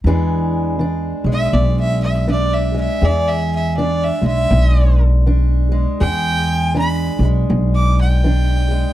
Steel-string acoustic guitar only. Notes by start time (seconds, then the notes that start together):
0.06 E2 E3 G#3 D4 G#4
0.79 E3 D4
1.26 G#3
1.53 B2
2.27 E3 D4
2.74 G#3
3.03 E2 G#4
3.78 E3 D4
4.23 G#3
4.51 B2
5.26 E3 D4
5.72 G#3
6.00 E2 G#4
6.75 E3 D4
7.23 G#3
7.50 B2
8.24 E3 D4
8.71 G#3